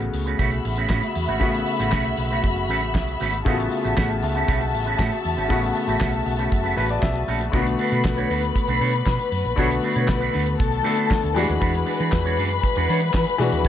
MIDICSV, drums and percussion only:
0, 0, Header, 1, 2, 480
1, 0, Start_track
1, 0, Tempo, 510204
1, 1328, Time_signature, 4, 2, 24, 8
1, 12870, End_track
2, 0, Start_track
2, 0, Title_t, "Drums"
2, 0, Note_on_c, 9, 42, 36
2, 93, Note_off_c, 9, 42, 0
2, 126, Note_on_c, 9, 46, 63
2, 220, Note_off_c, 9, 46, 0
2, 251, Note_on_c, 9, 42, 40
2, 345, Note_off_c, 9, 42, 0
2, 370, Note_on_c, 9, 36, 107
2, 379, Note_on_c, 9, 42, 70
2, 464, Note_off_c, 9, 36, 0
2, 473, Note_off_c, 9, 42, 0
2, 483, Note_on_c, 9, 42, 39
2, 577, Note_off_c, 9, 42, 0
2, 612, Note_on_c, 9, 46, 62
2, 706, Note_off_c, 9, 46, 0
2, 711, Note_on_c, 9, 42, 43
2, 805, Note_off_c, 9, 42, 0
2, 843, Note_on_c, 9, 39, 81
2, 845, Note_on_c, 9, 36, 103
2, 850, Note_on_c, 9, 38, 100
2, 937, Note_off_c, 9, 39, 0
2, 940, Note_off_c, 9, 36, 0
2, 944, Note_off_c, 9, 38, 0
2, 964, Note_on_c, 9, 42, 47
2, 1058, Note_off_c, 9, 42, 0
2, 1084, Note_on_c, 9, 46, 63
2, 1178, Note_off_c, 9, 46, 0
2, 1211, Note_on_c, 9, 42, 37
2, 1305, Note_off_c, 9, 42, 0
2, 1327, Note_on_c, 9, 42, 51
2, 1328, Note_on_c, 9, 36, 103
2, 1421, Note_off_c, 9, 42, 0
2, 1422, Note_off_c, 9, 36, 0
2, 1454, Note_on_c, 9, 42, 57
2, 1548, Note_off_c, 9, 42, 0
2, 1562, Note_on_c, 9, 46, 58
2, 1657, Note_off_c, 9, 46, 0
2, 1692, Note_on_c, 9, 42, 47
2, 1697, Note_on_c, 9, 38, 35
2, 1786, Note_off_c, 9, 42, 0
2, 1791, Note_off_c, 9, 38, 0
2, 1806, Note_on_c, 9, 39, 91
2, 1812, Note_on_c, 9, 36, 102
2, 1813, Note_on_c, 9, 38, 110
2, 1900, Note_off_c, 9, 39, 0
2, 1906, Note_off_c, 9, 36, 0
2, 1907, Note_off_c, 9, 38, 0
2, 1923, Note_on_c, 9, 42, 38
2, 2017, Note_off_c, 9, 42, 0
2, 2045, Note_on_c, 9, 46, 64
2, 2139, Note_off_c, 9, 46, 0
2, 2171, Note_on_c, 9, 42, 40
2, 2265, Note_off_c, 9, 42, 0
2, 2294, Note_on_c, 9, 36, 108
2, 2302, Note_on_c, 9, 42, 75
2, 2388, Note_off_c, 9, 36, 0
2, 2396, Note_off_c, 9, 42, 0
2, 2408, Note_on_c, 9, 42, 43
2, 2502, Note_off_c, 9, 42, 0
2, 2537, Note_on_c, 9, 46, 55
2, 2631, Note_off_c, 9, 46, 0
2, 2640, Note_on_c, 9, 42, 41
2, 2734, Note_off_c, 9, 42, 0
2, 2773, Note_on_c, 9, 36, 101
2, 2775, Note_on_c, 9, 39, 69
2, 2782, Note_on_c, 9, 38, 99
2, 2867, Note_off_c, 9, 36, 0
2, 2869, Note_off_c, 9, 39, 0
2, 2876, Note_off_c, 9, 38, 0
2, 2895, Note_on_c, 9, 42, 50
2, 2989, Note_off_c, 9, 42, 0
2, 3010, Note_on_c, 9, 46, 67
2, 3104, Note_off_c, 9, 46, 0
2, 3139, Note_on_c, 9, 42, 45
2, 3233, Note_off_c, 9, 42, 0
2, 3256, Note_on_c, 9, 36, 113
2, 3261, Note_on_c, 9, 42, 55
2, 3350, Note_off_c, 9, 36, 0
2, 3355, Note_off_c, 9, 42, 0
2, 3385, Note_on_c, 9, 42, 54
2, 3479, Note_off_c, 9, 42, 0
2, 3493, Note_on_c, 9, 46, 56
2, 3587, Note_off_c, 9, 46, 0
2, 3624, Note_on_c, 9, 42, 44
2, 3718, Note_off_c, 9, 42, 0
2, 3740, Note_on_c, 9, 36, 99
2, 3740, Note_on_c, 9, 39, 87
2, 3747, Note_on_c, 9, 38, 105
2, 3834, Note_off_c, 9, 36, 0
2, 3834, Note_off_c, 9, 39, 0
2, 3841, Note_off_c, 9, 38, 0
2, 3854, Note_on_c, 9, 42, 36
2, 3949, Note_off_c, 9, 42, 0
2, 3975, Note_on_c, 9, 46, 70
2, 4069, Note_off_c, 9, 46, 0
2, 4101, Note_on_c, 9, 42, 39
2, 4195, Note_off_c, 9, 42, 0
2, 4219, Note_on_c, 9, 36, 111
2, 4231, Note_on_c, 9, 42, 71
2, 4313, Note_off_c, 9, 36, 0
2, 4325, Note_off_c, 9, 42, 0
2, 4334, Note_on_c, 9, 42, 44
2, 4428, Note_off_c, 9, 42, 0
2, 4464, Note_on_c, 9, 46, 62
2, 4558, Note_off_c, 9, 46, 0
2, 4563, Note_on_c, 9, 42, 42
2, 4658, Note_off_c, 9, 42, 0
2, 4696, Note_on_c, 9, 36, 110
2, 4698, Note_on_c, 9, 39, 73
2, 4705, Note_on_c, 9, 38, 97
2, 4790, Note_off_c, 9, 36, 0
2, 4792, Note_off_c, 9, 39, 0
2, 4799, Note_off_c, 9, 38, 0
2, 4819, Note_on_c, 9, 42, 51
2, 4913, Note_off_c, 9, 42, 0
2, 4939, Note_on_c, 9, 46, 66
2, 5033, Note_off_c, 9, 46, 0
2, 5066, Note_on_c, 9, 42, 41
2, 5160, Note_off_c, 9, 42, 0
2, 5176, Note_on_c, 9, 36, 98
2, 5180, Note_on_c, 9, 42, 62
2, 5270, Note_off_c, 9, 36, 0
2, 5274, Note_off_c, 9, 42, 0
2, 5304, Note_on_c, 9, 42, 59
2, 5398, Note_off_c, 9, 42, 0
2, 5413, Note_on_c, 9, 46, 57
2, 5507, Note_off_c, 9, 46, 0
2, 5535, Note_on_c, 9, 42, 42
2, 5629, Note_off_c, 9, 42, 0
2, 5650, Note_on_c, 9, 39, 97
2, 5656, Note_on_c, 9, 36, 111
2, 5657, Note_on_c, 9, 38, 113
2, 5744, Note_off_c, 9, 39, 0
2, 5750, Note_off_c, 9, 36, 0
2, 5751, Note_off_c, 9, 38, 0
2, 5768, Note_on_c, 9, 42, 36
2, 5862, Note_off_c, 9, 42, 0
2, 5890, Note_on_c, 9, 46, 60
2, 5985, Note_off_c, 9, 46, 0
2, 6013, Note_on_c, 9, 42, 44
2, 6107, Note_off_c, 9, 42, 0
2, 6135, Note_on_c, 9, 36, 108
2, 6144, Note_on_c, 9, 42, 72
2, 6229, Note_off_c, 9, 36, 0
2, 6238, Note_off_c, 9, 42, 0
2, 6247, Note_on_c, 9, 42, 38
2, 6341, Note_off_c, 9, 42, 0
2, 6378, Note_on_c, 9, 46, 53
2, 6472, Note_off_c, 9, 46, 0
2, 6483, Note_on_c, 9, 42, 42
2, 6577, Note_off_c, 9, 42, 0
2, 6611, Note_on_c, 9, 36, 105
2, 6612, Note_on_c, 9, 39, 76
2, 6619, Note_on_c, 9, 38, 105
2, 6705, Note_off_c, 9, 36, 0
2, 6706, Note_off_c, 9, 39, 0
2, 6713, Note_off_c, 9, 38, 0
2, 6732, Note_on_c, 9, 42, 44
2, 6826, Note_off_c, 9, 42, 0
2, 6850, Note_on_c, 9, 46, 65
2, 6944, Note_off_c, 9, 46, 0
2, 6971, Note_on_c, 9, 42, 41
2, 7065, Note_off_c, 9, 42, 0
2, 7089, Note_on_c, 9, 36, 107
2, 7093, Note_on_c, 9, 42, 57
2, 7183, Note_off_c, 9, 36, 0
2, 7187, Note_off_c, 9, 42, 0
2, 7213, Note_on_c, 9, 42, 54
2, 7307, Note_off_c, 9, 42, 0
2, 7325, Note_on_c, 9, 46, 56
2, 7419, Note_off_c, 9, 46, 0
2, 7451, Note_on_c, 9, 42, 46
2, 7545, Note_off_c, 9, 42, 0
2, 7571, Note_on_c, 9, 39, 80
2, 7572, Note_on_c, 9, 36, 115
2, 7578, Note_on_c, 9, 38, 122
2, 7665, Note_off_c, 9, 39, 0
2, 7666, Note_off_c, 9, 36, 0
2, 7672, Note_off_c, 9, 38, 0
2, 7687, Note_on_c, 9, 42, 37
2, 7781, Note_off_c, 9, 42, 0
2, 7811, Note_on_c, 9, 46, 61
2, 7905, Note_off_c, 9, 46, 0
2, 7931, Note_on_c, 9, 42, 44
2, 8025, Note_off_c, 9, 42, 0
2, 8049, Note_on_c, 9, 36, 104
2, 8058, Note_on_c, 9, 42, 76
2, 8144, Note_off_c, 9, 36, 0
2, 8152, Note_off_c, 9, 42, 0
2, 8163, Note_on_c, 9, 42, 43
2, 8257, Note_off_c, 9, 42, 0
2, 8295, Note_on_c, 9, 46, 59
2, 8389, Note_off_c, 9, 46, 0
2, 8397, Note_on_c, 9, 42, 47
2, 8491, Note_off_c, 9, 42, 0
2, 8528, Note_on_c, 9, 39, 79
2, 8529, Note_on_c, 9, 36, 109
2, 8535, Note_on_c, 9, 38, 96
2, 8622, Note_off_c, 9, 39, 0
2, 8623, Note_off_c, 9, 36, 0
2, 8629, Note_off_c, 9, 38, 0
2, 8648, Note_on_c, 9, 42, 47
2, 8742, Note_off_c, 9, 42, 0
2, 8767, Note_on_c, 9, 46, 58
2, 8861, Note_off_c, 9, 46, 0
2, 8893, Note_on_c, 9, 42, 39
2, 8987, Note_off_c, 9, 42, 0
2, 9010, Note_on_c, 9, 36, 94
2, 9014, Note_on_c, 9, 42, 57
2, 9104, Note_off_c, 9, 36, 0
2, 9109, Note_off_c, 9, 42, 0
2, 9135, Note_on_c, 9, 42, 66
2, 9229, Note_off_c, 9, 42, 0
2, 9245, Note_on_c, 9, 46, 59
2, 9339, Note_off_c, 9, 46, 0
2, 9369, Note_on_c, 9, 42, 51
2, 9463, Note_off_c, 9, 42, 0
2, 9485, Note_on_c, 9, 39, 94
2, 9491, Note_on_c, 9, 36, 106
2, 9492, Note_on_c, 9, 38, 116
2, 9579, Note_off_c, 9, 39, 0
2, 9585, Note_off_c, 9, 36, 0
2, 9586, Note_off_c, 9, 38, 0
2, 9602, Note_on_c, 9, 42, 38
2, 9696, Note_off_c, 9, 42, 0
2, 9725, Note_on_c, 9, 46, 68
2, 9819, Note_off_c, 9, 46, 0
2, 9847, Note_on_c, 9, 42, 42
2, 9942, Note_off_c, 9, 42, 0
2, 9972, Note_on_c, 9, 36, 122
2, 9979, Note_on_c, 9, 42, 80
2, 10066, Note_off_c, 9, 36, 0
2, 10074, Note_off_c, 9, 42, 0
2, 10087, Note_on_c, 9, 42, 43
2, 10181, Note_off_c, 9, 42, 0
2, 10219, Note_on_c, 9, 46, 66
2, 10313, Note_off_c, 9, 46, 0
2, 10317, Note_on_c, 9, 42, 47
2, 10411, Note_off_c, 9, 42, 0
2, 10450, Note_on_c, 9, 36, 114
2, 10452, Note_on_c, 9, 39, 73
2, 10459, Note_on_c, 9, 38, 93
2, 10544, Note_off_c, 9, 36, 0
2, 10546, Note_off_c, 9, 39, 0
2, 10553, Note_off_c, 9, 38, 0
2, 10568, Note_on_c, 9, 42, 50
2, 10662, Note_off_c, 9, 42, 0
2, 10688, Note_on_c, 9, 46, 69
2, 10782, Note_off_c, 9, 46, 0
2, 10813, Note_on_c, 9, 42, 39
2, 10907, Note_off_c, 9, 42, 0
2, 10929, Note_on_c, 9, 36, 108
2, 10929, Note_on_c, 9, 42, 58
2, 11023, Note_off_c, 9, 36, 0
2, 11024, Note_off_c, 9, 42, 0
2, 11050, Note_on_c, 9, 42, 55
2, 11144, Note_off_c, 9, 42, 0
2, 11161, Note_on_c, 9, 46, 63
2, 11255, Note_off_c, 9, 46, 0
2, 11286, Note_on_c, 9, 42, 45
2, 11380, Note_off_c, 9, 42, 0
2, 11404, Note_on_c, 9, 39, 90
2, 11409, Note_on_c, 9, 36, 111
2, 11411, Note_on_c, 9, 38, 116
2, 11498, Note_off_c, 9, 39, 0
2, 11503, Note_off_c, 9, 36, 0
2, 11505, Note_off_c, 9, 38, 0
2, 11514, Note_on_c, 9, 42, 38
2, 11609, Note_off_c, 9, 42, 0
2, 11640, Note_on_c, 9, 46, 60
2, 11734, Note_off_c, 9, 46, 0
2, 11763, Note_on_c, 9, 42, 41
2, 11857, Note_off_c, 9, 42, 0
2, 11887, Note_on_c, 9, 36, 111
2, 11894, Note_on_c, 9, 42, 70
2, 11981, Note_off_c, 9, 36, 0
2, 11988, Note_off_c, 9, 42, 0
2, 11998, Note_on_c, 9, 42, 42
2, 12092, Note_off_c, 9, 42, 0
2, 12129, Note_on_c, 9, 46, 62
2, 12223, Note_off_c, 9, 46, 0
2, 12231, Note_on_c, 9, 42, 48
2, 12326, Note_off_c, 9, 42, 0
2, 12361, Note_on_c, 9, 39, 80
2, 12363, Note_on_c, 9, 36, 107
2, 12368, Note_on_c, 9, 38, 95
2, 12455, Note_off_c, 9, 39, 0
2, 12457, Note_off_c, 9, 36, 0
2, 12462, Note_off_c, 9, 38, 0
2, 12480, Note_on_c, 9, 42, 47
2, 12575, Note_off_c, 9, 42, 0
2, 12597, Note_on_c, 9, 46, 66
2, 12691, Note_off_c, 9, 46, 0
2, 12723, Note_on_c, 9, 42, 44
2, 12817, Note_off_c, 9, 42, 0
2, 12837, Note_on_c, 9, 42, 58
2, 12840, Note_on_c, 9, 36, 110
2, 12870, Note_off_c, 9, 36, 0
2, 12870, Note_off_c, 9, 42, 0
2, 12870, End_track
0, 0, End_of_file